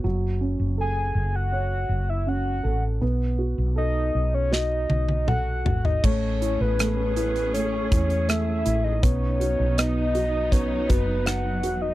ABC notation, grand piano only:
X:1
M:4/4
L:1/8
Q:1/4=80
K:Alyd
V:1 name="Grand piano"
F, C A2 c2 C A | B, F A2 F2 A F | A, E A, E A, E A, E | B, F B, F B, F B, F |]